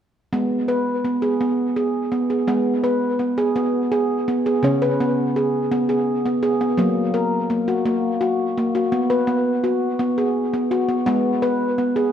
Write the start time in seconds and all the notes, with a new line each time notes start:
0.33 G#3 B3
0.68 B4
1.04 B3
1.22 G#4
1.41 B3
1.76 G#4
2.12 B3
2.30 G#4
2.47 G#3 B3
2.84 B4
3.19 B3
3.38 G#4
3.56 B3
3.92 G#4
4.28 B3
4.46 G#4
4.63 C#3 C#4
4.82 B4
5.00 B3
5.36 G#4
5.72 B3
5.89 G#4
6.26 B3
6.43 G#4
6.61 B3
6.78 F#3 A#3
7.14 A#4
7.50 A#3
7.68 F#4
7.86 A#3
8.21 F#4
8.58 A#3
8.75 F#4
8.92 B3
9.10 B4
9.27 B3
9.64 F#4
9.99 B3
10.18 G#4
10.53 B3
10.71 F#4
10.89 B3
11.06 G#3 B3
11.42 B4
11.78 B3
11.96 G#4